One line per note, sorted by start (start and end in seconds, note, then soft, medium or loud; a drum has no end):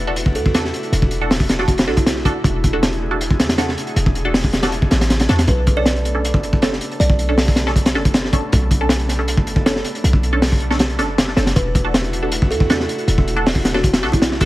0.00 0.37 E1 loud
0.00 5.44 A3 medium
0.00 5.44 D4 medium
0.00 5.44 E4 medium
0.00 2.41 F#4 medium
0.07 0.14 D4 medium
0.07 0.14 F#4 medium
0.07 0.14 A4 medium
0.16 closed hi-hat medium
0.26 kick medium
0.35 0.72 E2 medium
0.35 0.59 A4 medium
0.35 closed hi-hat medium
0.46 kick medium
0.54 0.66 D4 medium
0.54 0.66 F#4 medium
0.54 0.66 A4 loud
0.54 snare loud
0.54 closed hi-hat medium
0.65 snare medium
0.74 closed hi-hat medium
0.83 closed hi-hat soft
0.92 1.89 E1 medium
0.92 closed hi-hat medium
1.02 kick medium
1.11 closed hi-hat medium
1.21 1.33 D4 medium
1.21 1.33 F#4 medium
1.21 1.33 A4 loud
1.31 snare loud
1.31 open hi-hat medium
1.40 kick medium
1.49 snare loud
1.49 closed hi-hat medium
1.59 1.66 D4 medium
1.59 1.65 F#4 medium
1.59 1.66 F#4 medium
1.59 1.66 A4 loud
1.59 snare soft
1.68 1.75 F#4 medium
1.68 kick medium
1.68 closed hi-hat medium
1.78 snare loud
1.78 closed hi-hat medium
1.87 2.34 B1 medium
1.87 1.95 D4 medium
1.87 1.95 F#4 medium
1.87 1.95 A4 loud
1.87 snare soft
1.97 2.25 E4 medium
1.97 kick medium
1.97 closed hi-hat medium
2.06 snare loud
2.06 closed hi-hat medium
2.16 snare soft
2.25 2.37 D4 medium
2.25 2.37 F#4 medium
2.25 2.37 A4 loud
2.25 kick medium
2.25 closed hi-hat medium
2.44 3.41 E1 loud
2.44 5.45 G#4 medium
2.44 kick loud
2.44 closed hi-hat medium
2.64 kick medium
2.64 closed hi-hat medium
2.73 2.85 D4 medium
2.73 2.85 F#4 medium
2.73 2.85 A4 loud
2.83 snare loud
2.83 closed hi-hat medium
2.93 closed hi-hat soft
3.11 3.18 D4 medium
3.11 3.18 F#4 medium
3.11 3.18 A4 medium
3.21 closed hi-hat medium
3.30 kick medium
3.39 3.76 E2 medium
3.39 snare loud
3.39 closed hi-hat medium
3.49 snare loud
3.49 closed hi-hat medium
3.58 3.70 D4 medium
3.58 3.70 F#4 medium
3.58 3.70 A4 medium
3.58 snare loud
3.58 closed hi-hat medium
3.68 snare medium
3.78 closed hi-hat medium
3.87 closed hi-hat soft
3.96 4.90 E1 loud
3.96 closed hi-hat medium
4.06 kick medium
4.15 closed hi-hat medium
4.25 4.36 D4 loud
4.25 4.36 F#4 medium
4.25 4.36 A4 loud
4.34 snare loud
4.34 open hi-hat medium
4.44 kick medium
4.53 snare medium
4.53 closed hi-hat medium
4.63 4.70 D4 loud
4.63 4.70 F#4 medium
4.63 4.70 A4 loud
4.63 snare loud
4.63 closed hi-hat medium
4.72 closed hi-hat medium
4.82 kick medium
4.91 5.28 A1 loud
4.91 snare loud
4.91 closed hi-hat medium
5.01 snare medium
5.01 closed hi-hat medium
5.10 snare medium
5.10 closed hi-hat medium
5.20 snare medium
5.20 closed hi-hat medium
5.29 5.46 E2 medium
5.29 5.41 D4 medium
5.29 5.41 F#4 medium
5.29 5.41 A4 loud
5.29 snare medium
5.29 closed hi-hat medium
5.39 snare medium
5.39 closed hi-hat medium
5.47 6.44 B1 loud
5.47 11.52 A3 medium
5.47 11.52 B3 medium
5.47 14.45 D4 medium
5.47 11.52 A4 medium
5.47 5.71 B4 medium
5.47 kick loud
5.47 closed hi-hat medium
5.67 kick loud
5.67 closed hi-hat medium
5.77 5.88 C#4 medium
5.77 5.88 D4 medium
5.77 5.88 A4 loud
5.77 6.00 D5 medium
5.86 snare loud
5.86 closed hi-hat medium
5.96 closed hi-hat soft
6.05 closed hi-hat medium
6.15 6.22 C#4 medium
6.15 6.22 D4 medium
6.15 6.22 A4 medium
6.25 closed hi-hat medium
6.34 kick medium
6.43 6.80 F#1 medium
6.43 closed hi-hat medium
6.53 kick medium
6.62 6.74 C#4 medium
6.62 6.74 D4 medium
6.62 6.74 A4 loud
6.62 snare loud
6.62 closed hi-hat medium
6.73 snare medium
6.81 closed hi-hat medium
6.91 closed hi-hat soft
7.00 7.97 B1 loud
7.00 7.53 D5 medium
7.00 closed hi-hat medium
7.10 kick medium
7.19 closed hi-hat medium
7.29 7.40 C#4 medium
7.29 7.40 D4 medium
7.29 7.40 A4 loud
7.38 snare loud
7.38 open hi-hat medium
7.48 kick medium
7.56 snare medium
7.56 closed hi-hat medium
7.67 7.74 C#4 medium
7.67 7.74 D4 medium
7.67 7.74 A4 loud
7.67 snare soft
7.76 kick medium
7.76 closed hi-hat medium
7.86 snare loud
7.86 closed hi-hat medium
7.95 8.41 F#1 medium
7.95 8.03 C#4 loud
7.95 8.03 D4 medium
7.95 8.03 A4 loud
7.95 snare soft
8.05 kick medium
8.05 closed hi-hat medium
8.14 snare loud
8.14 closed hi-hat medium
8.25 snare soft
8.33 8.45 C#4 loud
8.33 8.45 D4 medium
8.33 8.45 A4 loud
8.33 kick medium
8.33 closed hi-hat medium
8.52 9.49 B1 loud
8.52 kick loud
8.52 closed hi-hat medium
8.71 kick medium
8.71 closed hi-hat medium
8.81 8.92 C#4 medium
8.81 8.92 D4 medium
8.81 8.92 A4 loud
8.89 snare loud
8.89 closed hi-hat medium
8.99 closed hi-hat soft
9.08 snare soft
9.08 closed hi-hat medium
9.19 9.26 C#4 medium
9.19 9.26 D4 medium
9.19 9.26 A4 medium
9.28 closed hi-hat medium
9.37 kick medium
9.47 9.84 F#1 medium
9.47 closed hi-hat medium
9.56 kick medium
9.66 9.78 C#4 medium
9.66 9.78 D4 medium
9.66 9.78 A4 loud
9.66 snare loud
9.66 closed hi-hat medium
9.76 snare medium
9.84 closed hi-hat medium
9.95 closed hi-hat soft
10.04 11.00 B1 loud
10.04 closed hi-hat medium
10.13 kick medium
10.23 closed hi-hat medium
10.33 10.44 C#4 loud
10.33 10.44 D4 medium
10.33 10.44 A4 loud
10.42 snare loud
10.42 open hi-hat medium
10.52 kick medium
10.60 closed hi-hat medium
10.70 10.78 C#4 loud
10.70 10.78 D4 medium
10.70 10.78 A4 loud
10.70 snare medium
10.79 snare loud
10.79 closed hi-hat medium
10.90 closed hi-hat soft
10.99 11.36 F#1 medium
10.99 11.06 C#4 medium
10.99 11.06 D4 medium
10.99 11.06 A4 loud
10.99 snare soft
10.99 closed hi-hat medium
11.18 snare loud
11.18 closed hi-hat medium
11.28 snare soft
11.37 11.54 F#1 medium
11.37 11.49 C#4 medium
11.37 11.49 D4 medium
11.37 11.49 A4 loud
11.37 snare loud
11.37 closed hi-hat medium
11.46 snare medium
11.46 closed hi-hat medium
11.56 12.52 E1 medium
11.56 14.45 A3 medium
11.56 14.45 E4 medium
11.56 14.45 F#4 medium
11.56 11.79 B4 medium
11.56 kick loud
11.56 closed hi-hat medium
11.75 kick loud
11.75 closed hi-hat medium
11.84 11.96 D4 medium
11.84 11.96 F#4 medium
11.84 11.96 A4 loud
11.94 snare loud
11.94 closed hi-hat medium
12.04 closed hi-hat soft
12.13 closed hi-hat medium
12.22 12.30 D4 medium
12.22 12.30 F#4 medium
12.22 12.30 A4 medium
12.32 closed hi-hat medium
12.42 kick medium
12.51 12.87 E2 medium
12.51 12.74 A4 medium
12.51 closed hi-hat medium
12.60 kick medium
12.70 12.82 D4 medium
12.70 12.82 F#4 medium
12.70 12.82 A4 loud
12.70 snare loud
12.70 closed hi-hat medium
12.80 snare medium
12.89 closed hi-hat medium
12.98 closed hi-hat soft
13.08 14.04 E1 loud
13.08 closed hi-hat medium
13.18 kick medium
13.28 closed hi-hat medium
13.36 13.48 D4 medium
13.36 13.48 F#4 medium
13.36 13.48 A4 loud
13.46 snare loud
13.46 open hi-hat medium
13.55 kick medium
13.65 snare loud
13.65 closed hi-hat medium
13.74 13.81 D4 medium
13.74 13.80 F#4 medium
13.74 13.81 F#4 medium
13.74 13.81 A4 loud
13.74 snare soft
13.83 13.90 F#4 medium
13.83 kick medium
13.83 closed hi-hat medium
13.93 snare loud
13.93 closed hi-hat medium
14.03 14.45 B1 medium
14.03 14.10 D4 loud
14.03 14.10 F#4 medium
14.03 14.10 A4 loud
14.03 snare soft
14.12 14.41 E4 medium
14.12 kick medium
14.12 closed hi-hat medium
14.22 snare loud
14.22 closed hi-hat medium
14.31 snare medium
14.41 14.45 D4 loud
14.41 14.45 F#4 medium
14.41 14.45 A4 loud
14.41 kick loud
14.41 closed hi-hat medium